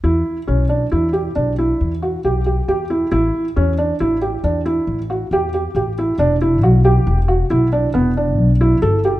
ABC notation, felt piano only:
X:1
M:7/4
L:1/8
Q:1/4=137
K:Edor
V:1 name="Felt piano"
E2 C D E G D E2 F G G G E | E2 C D E G D E2 F G G G E | D E F G2 F E D B, D2 E A G |]